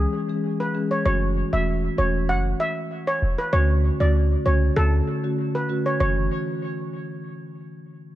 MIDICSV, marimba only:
0, 0, Header, 1, 2, 480
1, 0, Start_track
1, 0, Key_signature, 3, "minor"
1, 0, Tempo, 618557
1, 819, Time_signature, 4, 2, 24, 8
1, 6327, End_track
2, 0, Start_track
2, 0, Title_t, "Marimba"
2, 0, Program_c, 0, 12
2, 223, Note_on_c, 0, 52, 79
2, 225, Note_on_c, 0, 56, 70
2, 227, Note_on_c, 0, 61, 68
2, 228, Note_on_c, 0, 68, 85
2, 360, Note_off_c, 0, 52, 0
2, 361, Note_off_c, 0, 56, 0
2, 361, Note_off_c, 0, 61, 0
2, 362, Note_off_c, 0, 68, 0
2, 576, Note_on_c, 0, 52, 77
2, 578, Note_on_c, 0, 56, 74
2, 579, Note_on_c, 0, 61, 76
2, 580, Note_on_c, 0, 68, 86
2, 724, Note_off_c, 0, 52, 0
2, 725, Note_off_c, 0, 56, 0
2, 726, Note_off_c, 0, 61, 0
2, 726, Note_off_c, 0, 68, 0
2, 816, Note_on_c, 0, 52, 93
2, 818, Note_on_c, 0, 57, 86
2, 819, Note_on_c, 0, 61, 85
2, 821, Note_on_c, 0, 66, 106
2, 964, Note_off_c, 0, 52, 0
2, 965, Note_off_c, 0, 57, 0
2, 966, Note_off_c, 0, 61, 0
2, 967, Note_off_c, 0, 66, 0
2, 1183, Note_on_c, 0, 52, 76
2, 1185, Note_on_c, 0, 57, 74
2, 1187, Note_on_c, 0, 61, 67
2, 1188, Note_on_c, 0, 66, 84
2, 1320, Note_off_c, 0, 52, 0
2, 1321, Note_off_c, 0, 57, 0
2, 1321, Note_off_c, 0, 61, 0
2, 1322, Note_off_c, 0, 66, 0
2, 1535, Note_on_c, 0, 52, 79
2, 1537, Note_on_c, 0, 57, 74
2, 1538, Note_on_c, 0, 61, 72
2, 1540, Note_on_c, 0, 66, 89
2, 1684, Note_off_c, 0, 52, 0
2, 1685, Note_off_c, 0, 57, 0
2, 1685, Note_off_c, 0, 61, 0
2, 1686, Note_off_c, 0, 66, 0
2, 2736, Note_on_c, 0, 50, 96
2, 2738, Note_on_c, 0, 57, 85
2, 2739, Note_on_c, 0, 61, 82
2, 2741, Note_on_c, 0, 66, 100
2, 3075, Note_off_c, 0, 50, 0
2, 3075, Note_off_c, 0, 57, 0
2, 3076, Note_off_c, 0, 61, 0
2, 3077, Note_off_c, 0, 66, 0
2, 3103, Note_on_c, 0, 50, 74
2, 3105, Note_on_c, 0, 57, 73
2, 3106, Note_on_c, 0, 61, 68
2, 3108, Note_on_c, 0, 66, 86
2, 3240, Note_off_c, 0, 50, 0
2, 3240, Note_off_c, 0, 57, 0
2, 3241, Note_off_c, 0, 61, 0
2, 3242, Note_off_c, 0, 66, 0
2, 3457, Note_on_c, 0, 50, 79
2, 3459, Note_on_c, 0, 57, 74
2, 3460, Note_on_c, 0, 61, 76
2, 3462, Note_on_c, 0, 66, 91
2, 3605, Note_off_c, 0, 50, 0
2, 3606, Note_off_c, 0, 57, 0
2, 3606, Note_off_c, 0, 61, 0
2, 3607, Note_off_c, 0, 66, 0
2, 3696, Note_on_c, 0, 50, 94
2, 3697, Note_on_c, 0, 57, 83
2, 3699, Note_on_c, 0, 61, 81
2, 3700, Note_on_c, 0, 66, 98
2, 3845, Note_off_c, 0, 50, 0
2, 3845, Note_off_c, 0, 57, 0
2, 3846, Note_off_c, 0, 61, 0
2, 3846, Note_off_c, 0, 66, 0
2, 4064, Note_on_c, 0, 50, 77
2, 4065, Note_on_c, 0, 57, 72
2, 4067, Note_on_c, 0, 61, 73
2, 4068, Note_on_c, 0, 66, 82
2, 4200, Note_off_c, 0, 50, 0
2, 4201, Note_off_c, 0, 57, 0
2, 4202, Note_off_c, 0, 61, 0
2, 4202, Note_off_c, 0, 66, 0
2, 4416, Note_on_c, 0, 50, 80
2, 4417, Note_on_c, 0, 57, 73
2, 4419, Note_on_c, 0, 61, 72
2, 4421, Note_on_c, 0, 66, 88
2, 4564, Note_off_c, 0, 50, 0
2, 4565, Note_off_c, 0, 57, 0
2, 4566, Note_off_c, 0, 61, 0
2, 4567, Note_off_c, 0, 66, 0
2, 4654, Note_on_c, 0, 52, 85
2, 4657, Note_on_c, 0, 57, 75
2, 4659, Note_on_c, 0, 61, 75
2, 4662, Note_on_c, 0, 66, 97
2, 4838, Note_off_c, 0, 52, 0
2, 4839, Note_off_c, 0, 57, 0
2, 4840, Note_off_c, 0, 61, 0
2, 4842, Note_off_c, 0, 66, 0
2, 6327, End_track
0, 0, End_of_file